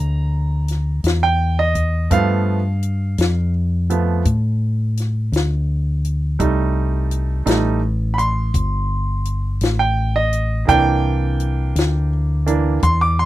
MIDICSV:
0, 0, Header, 1, 4, 480
1, 0, Start_track
1, 0, Tempo, 715137
1, 1415, Time_signature, 12, 3, 24, 8
1, 8896, End_track
2, 0, Start_track
2, 0, Title_t, "Grand piano"
2, 0, Program_c, 0, 0
2, 0, Note_on_c, 0, 52, 42
2, 0, Note_on_c, 0, 58, 40
2, 0, Note_on_c, 0, 74, 45
2, 0, Note_on_c, 0, 82, 73
2, 795, Note_off_c, 0, 82, 0
2, 826, Note_on_c, 0, 79, 69
2, 1053, Note_off_c, 0, 79, 0
2, 1067, Note_on_c, 0, 75, 65
2, 1389, Note_off_c, 0, 52, 0
2, 1390, Note_off_c, 0, 58, 0
2, 1393, Note_off_c, 0, 74, 0
2, 1411, Note_off_c, 0, 75, 0
2, 1413, Note_on_c, 0, 53, 42
2, 1415, Note_on_c, 0, 57, 38
2, 1419, Note_on_c, 0, 59, 48
2, 1424, Note_on_c, 0, 77, 76
2, 1733, Note_off_c, 0, 53, 0
2, 1734, Note_off_c, 0, 57, 0
2, 1737, Note_off_c, 0, 59, 0
2, 2353, Note_off_c, 0, 77, 0
2, 2616, Note_on_c, 0, 53, 35
2, 2617, Note_on_c, 0, 57, 32
2, 2618, Note_on_c, 0, 59, 39
2, 2832, Note_off_c, 0, 53, 0
2, 2832, Note_off_c, 0, 57, 0
2, 2833, Note_off_c, 0, 59, 0
2, 4289, Note_on_c, 0, 55, 40
2, 4292, Note_on_c, 0, 57, 36
2, 4295, Note_on_c, 0, 63, 45
2, 4994, Note_off_c, 0, 55, 0
2, 4996, Note_off_c, 0, 63, 0
2, 4997, Note_off_c, 0, 57, 0
2, 5004, Note_on_c, 0, 55, 39
2, 5006, Note_on_c, 0, 63, 45
2, 5007, Note_on_c, 0, 57, 35
2, 5225, Note_off_c, 0, 55, 0
2, 5226, Note_off_c, 0, 63, 0
2, 5227, Note_off_c, 0, 57, 0
2, 5462, Note_on_c, 0, 83, 52
2, 5492, Note_off_c, 0, 83, 0
2, 5492, Note_on_c, 0, 84, 75
2, 6545, Note_off_c, 0, 84, 0
2, 6573, Note_on_c, 0, 79, 67
2, 6806, Note_off_c, 0, 79, 0
2, 6818, Note_on_c, 0, 75, 67
2, 7161, Note_on_c, 0, 52, 42
2, 7164, Note_off_c, 0, 75, 0
2, 7166, Note_on_c, 0, 58, 41
2, 7172, Note_on_c, 0, 62, 48
2, 7174, Note_on_c, 0, 79, 86
2, 8105, Note_off_c, 0, 79, 0
2, 8356, Note_off_c, 0, 52, 0
2, 8356, Note_off_c, 0, 58, 0
2, 8360, Note_off_c, 0, 62, 0
2, 8366, Note_on_c, 0, 52, 41
2, 8366, Note_on_c, 0, 58, 35
2, 8370, Note_on_c, 0, 62, 44
2, 8583, Note_off_c, 0, 52, 0
2, 8584, Note_off_c, 0, 58, 0
2, 8585, Note_off_c, 0, 62, 0
2, 8613, Note_on_c, 0, 84, 77
2, 8723, Note_off_c, 0, 84, 0
2, 8735, Note_on_c, 0, 86, 69
2, 8844, Note_off_c, 0, 86, 0
2, 8855, Note_on_c, 0, 84, 77
2, 8896, Note_off_c, 0, 84, 0
2, 8896, End_track
3, 0, Start_track
3, 0, Title_t, "Fingered electric bass"
3, 0, Program_c, 1, 33
3, 0, Note_on_c, 1, 38, 73
3, 675, Note_off_c, 1, 38, 0
3, 696, Note_on_c, 1, 40, 77
3, 1394, Note_off_c, 1, 40, 0
3, 1417, Note_on_c, 1, 43, 76
3, 2115, Note_off_c, 1, 43, 0
3, 2137, Note_on_c, 1, 41, 88
3, 2835, Note_off_c, 1, 41, 0
3, 2857, Note_on_c, 1, 45, 73
3, 3555, Note_off_c, 1, 45, 0
3, 3572, Note_on_c, 1, 38, 82
3, 4272, Note_off_c, 1, 38, 0
3, 4295, Note_on_c, 1, 36, 82
3, 4994, Note_off_c, 1, 36, 0
3, 5009, Note_on_c, 1, 33, 88
3, 5710, Note_off_c, 1, 33, 0
3, 5735, Note_on_c, 1, 31, 82
3, 6432, Note_off_c, 1, 31, 0
3, 6451, Note_on_c, 1, 33, 86
3, 7150, Note_off_c, 1, 33, 0
3, 7171, Note_on_c, 1, 36, 85
3, 7869, Note_off_c, 1, 36, 0
3, 7889, Note_on_c, 1, 38, 93
3, 8587, Note_off_c, 1, 38, 0
3, 8611, Note_on_c, 1, 40, 81
3, 8896, Note_off_c, 1, 40, 0
3, 8896, End_track
4, 0, Start_track
4, 0, Title_t, "Drums"
4, 457, Note_on_c, 9, 42, 57
4, 476, Note_on_c, 9, 38, 32
4, 524, Note_off_c, 9, 42, 0
4, 543, Note_off_c, 9, 38, 0
4, 697, Note_on_c, 9, 42, 72
4, 716, Note_on_c, 9, 38, 97
4, 764, Note_off_c, 9, 42, 0
4, 783, Note_off_c, 9, 38, 0
4, 1175, Note_on_c, 9, 42, 55
4, 1177, Note_on_c, 9, 36, 69
4, 1242, Note_off_c, 9, 42, 0
4, 1244, Note_off_c, 9, 36, 0
4, 1415, Note_on_c, 9, 42, 80
4, 1417, Note_on_c, 9, 36, 101
4, 1482, Note_off_c, 9, 42, 0
4, 1484, Note_off_c, 9, 36, 0
4, 1896, Note_on_c, 9, 42, 56
4, 1963, Note_off_c, 9, 42, 0
4, 2135, Note_on_c, 9, 42, 80
4, 2154, Note_on_c, 9, 38, 99
4, 2202, Note_off_c, 9, 42, 0
4, 2221, Note_off_c, 9, 38, 0
4, 2619, Note_on_c, 9, 42, 53
4, 2686, Note_off_c, 9, 42, 0
4, 2854, Note_on_c, 9, 42, 72
4, 2856, Note_on_c, 9, 36, 100
4, 2921, Note_off_c, 9, 42, 0
4, 2924, Note_off_c, 9, 36, 0
4, 3338, Note_on_c, 9, 42, 55
4, 3357, Note_on_c, 9, 38, 31
4, 3405, Note_off_c, 9, 42, 0
4, 3424, Note_off_c, 9, 38, 0
4, 3579, Note_on_c, 9, 42, 64
4, 3598, Note_on_c, 9, 38, 90
4, 3646, Note_off_c, 9, 42, 0
4, 3665, Note_off_c, 9, 38, 0
4, 4058, Note_on_c, 9, 42, 52
4, 4125, Note_off_c, 9, 42, 0
4, 4294, Note_on_c, 9, 42, 72
4, 4295, Note_on_c, 9, 36, 94
4, 4361, Note_off_c, 9, 42, 0
4, 4362, Note_off_c, 9, 36, 0
4, 4772, Note_on_c, 9, 42, 57
4, 4840, Note_off_c, 9, 42, 0
4, 5012, Note_on_c, 9, 42, 85
4, 5030, Note_on_c, 9, 38, 104
4, 5079, Note_off_c, 9, 42, 0
4, 5097, Note_off_c, 9, 38, 0
4, 5497, Note_on_c, 9, 42, 59
4, 5564, Note_off_c, 9, 42, 0
4, 5733, Note_on_c, 9, 36, 105
4, 5734, Note_on_c, 9, 42, 78
4, 5800, Note_off_c, 9, 36, 0
4, 5801, Note_off_c, 9, 42, 0
4, 6211, Note_on_c, 9, 42, 61
4, 6278, Note_off_c, 9, 42, 0
4, 6449, Note_on_c, 9, 42, 73
4, 6467, Note_on_c, 9, 38, 95
4, 6516, Note_off_c, 9, 42, 0
4, 6535, Note_off_c, 9, 38, 0
4, 6931, Note_on_c, 9, 42, 53
4, 6998, Note_off_c, 9, 42, 0
4, 7172, Note_on_c, 9, 36, 105
4, 7173, Note_on_c, 9, 42, 73
4, 7239, Note_off_c, 9, 36, 0
4, 7240, Note_off_c, 9, 42, 0
4, 7649, Note_on_c, 9, 42, 52
4, 7717, Note_off_c, 9, 42, 0
4, 7893, Note_on_c, 9, 42, 77
4, 7912, Note_on_c, 9, 38, 103
4, 7960, Note_off_c, 9, 42, 0
4, 7979, Note_off_c, 9, 38, 0
4, 8372, Note_on_c, 9, 42, 58
4, 8439, Note_off_c, 9, 42, 0
4, 8608, Note_on_c, 9, 42, 75
4, 8610, Note_on_c, 9, 36, 104
4, 8675, Note_off_c, 9, 42, 0
4, 8678, Note_off_c, 9, 36, 0
4, 8896, End_track
0, 0, End_of_file